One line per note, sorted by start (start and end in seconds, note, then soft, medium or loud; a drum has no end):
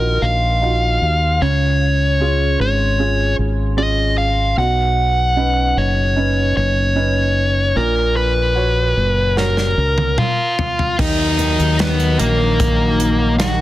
0.00 0.18 A#1 medium
0.00 1.37 D#3 soft
0.00 0.62 D#4 soft
0.00 0.62 F4 soft
0.00 0.63 F#4 soft
0.00 0.24 A#4 medium
0.22 0.98 A#1 medium
0.22 1.45 F5 medium
0.62 1.39 D#4 soft
0.62 1.39 F4 soft
0.62 1.39 F#4 soft
1.02 1.39 D#2 medium
1.41 2.56 C#2 medium
1.41 4.54 C#3 soft
1.41 2.60 C#5 medium
2.20 2.97 C#4 soft
2.20 2.97 F4 soft
2.20 2.97 G#4 soft
2.60 3.34 G#1 medium
2.60 3.35 C#5 medium
2.99 3.76 C#4 soft
2.99 3.76 F4 soft
2.99 3.76 G#4 soft
3.39 4.54 G#1 medium
3.77 4.55 C#4 soft
3.77 4.55 F4 soft
3.77 4.55 G#4 soft
3.77 4.15 D#5 medium
4.18 4.55 F5 medium
4.57 5.73 B1 medium
4.57 7.72 B2 soft
4.57 5.81 F#5 medium
5.36 6.14 C#4 soft
5.36 6.14 D#4 soft
5.36 6.14 B4 soft
5.77 6.52 F#1 medium
5.77 6.56 C#5 medium
6.16 6.94 C#4 soft
6.16 6.94 D#4 soft
6.16 6.94 B4 soft
6.57 7.72 F#1 medium
6.57 7.80 C#5 medium
6.96 7.73 C#4 soft
6.96 7.73 D#4 soft
6.96 7.74 B4 soft
7.76 8.93 A#1 medium
7.76 10.14 A#2 medium
7.76 8.16 A#4 medium
8.16 9.38 B4 medium
8.55 9.34 F#4 soft
8.55 9.34 C#5 soft
8.97 9.73 F#1 medium
9.36 10.15 F#4 soft
9.36 10.15 A#4 soft
9.36 10.55 A#4 soft
9.36 10.15 C#5 soft
9.36 snare soft
9.57 snare soft
9.78 10.16 C#2 medium
9.98 high tom medium
10.18 10.96 F4 medium
10.18 11.02 F5 medium
10.18 mid tom medium
10.59 floor tom medium
10.79 floor tom medium
10.99 11.56 D#2 medium
10.99 11.37 D#3 medium
10.99 13.61 D#3 medium
10.99 13.61 F#3 medium
10.99 13.61 D#4 medium
10.99 11.76 D#4 medium
10.99 11.80 D#5 medium
10.99 kick loud
10.99 crash medium
10.99 downlifter medium
11.39 11.78 D#3 medium
11.39 closed hi-hat medium
11.60 12.16 D#2 medium
11.60 closed hi-hat soft
11.79 12.18 D#3 soft
11.79 12.17 B3 soft
11.79 12.19 B4 medium
11.79 snare loud
11.79 closed hi-hat medium
12.00 closed hi-hat medium
12.19 13.61 A#1 medium
12.19 13.38 D#3 medium
12.19 13.36 A#3 medium
12.19 13.35 A#4 medium
12.19 closed hi-hat medium
12.60 kick medium
12.60 closed hi-hat medium
13.00 closed hi-hat medium
13.38 13.61 D#3 medium
13.38 13.61 F#4 medium
13.38 13.61 F#5 medium
13.38 snare loud
13.38 closed hi-hat medium